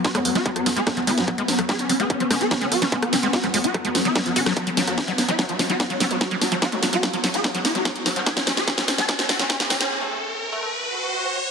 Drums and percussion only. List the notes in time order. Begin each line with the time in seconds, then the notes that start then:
0.05 kick, snare, closed hi-hat
0.15 cross-stick, closed hi-hat
0.25 open hi-hat
0.35 snare, closed hi-hat
0.46 kick, closed hi-hat
0.56 cross-stick, closed hi-hat
0.66 snare, open hi-hat
0.76 closed hi-hat
0.87 kick, cross-stick, snare, closed hi-hat
0.97 closed hi-hat
1.07 open hi-hat
1.18 snare, closed hi-hat
1.28 kick, cross-stick, closed hi-hat
1.38 closed hi-hat
1.48 snare, open hi-hat
1.59 cross-stick, closed hi-hat
1.69 kick, snare, closed hi-hat
1.79 closed hi-hat
1.89 open hi-hat
2.00 closed hi-hat
2.10 kick, closed hi-hat
2.20 closed hi-hat
2.31 cross-stick, snare, open hi-hat
2.41 closed hi-hat
2.51 kick, snare, closed hi-hat
2.61 closed hi-hat
2.72 cross-stick, open hi-hat
2.82 snare, closed hi-hat
2.92 kick, closed hi-hat
3.02 cross-stick, closed hi-hat
3.13 snare, open hi-hat
3.23 closed hi-hat
3.33 kick, snare, closed hi-hat
3.44 cross-stick, closed hi-hat
3.54 open hi-hat
3.64 closed hi-hat
3.74 kick, cross-stick, closed hi-hat
3.85 closed hi-hat
3.95 snare, open hi-hat
4.05 closed hi-hat
4.16 kick, cross-stick, snare, closed hi-hat
4.26 closed hi-hat
4.36 open hi-hat
4.46 cross-stick, snare, closed hi-hat
4.57 kick, closed hi-hat
4.67 closed hi-hat
4.77 snare, open hi-hat
4.87 cross-stick, closed hi-hat
4.98 kick, snare, closed hi-hat
5.08 closed hi-hat
5.18 snare, open hi-hat
5.29 closed hi-hat
5.39 kick, snare, closed hi-hat
5.49 closed hi-hat
5.59 snare, open hi-hat
5.70 closed hi-hat
5.80 kick, snare, closed hi-hat
5.90 closed hi-hat
6.00 snare, open hi-hat
6.11 closed hi-hat
6.21 kick, snare, closed hi-hat
6.31 closed hi-hat
6.42 snare, open hi-hat
6.52 closed hi-hat
6.62 kick, snare, closed hi-hat
6.72 closed hi-hat
6.83 snare, open hi-hat
6.93 closed hi-hat
7.03 kick, snare, closed hi-hat
7.13 closed hi-hat
7.24 snare, open hi-hat
7.34 closed hi-hat
7.44 kick, snare, closed hi-hat
7.55 closed hi-hat
7.65 snare, open hi-hat
7.75 closed hi-hat
7.85 kick, snare, closed hi-hat
7.96 closed hi-hat
8.06 snare, open hi-hat
8.16 closed hi-hat
8.26 kick, snare, closed hi-hat
8.37 snare, closed hi-hat
8.47 snare, open hi-hat
8.57 snare, closed hi-hat
8.68 kick, snare, closed hi-hat
8.78 snare, closed hi-hat
8.88 snare, open hi-hat
8.98 snare, closed hi-hat
9.09 kick, snare, closed hi-hat
9.19 snare, closed hi-hat
9.29 snare, open hi-hat
9.39 snare, closed hi-hat
9.50 kick, snare, closed hi-hat
9.60 snare, closed hi-hat
9.70 snare, open hi-hat
9.81 snare, closed hi-hat